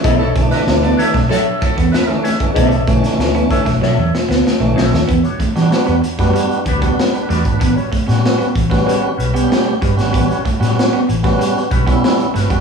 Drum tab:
HH |x-xx-xxxx-xx--xx|xxxx-xxx--------|xxxx-xxxxxxx-xxx|xxxx-xxxx-xx--xx|
SD |---oo--o----o-o-|---oo--oo-ooo-oo|---oo--o----o-o-|---oo--o----o--o|
BD |o-o----o--oo---o|o-o---oo--------|o-o----o--oo---o|o-o---oo------o-|

HH |xxxx--xxxxxx-xxx|
SD |---oo--o----o-o-|
BD |o-o----o--oo---o|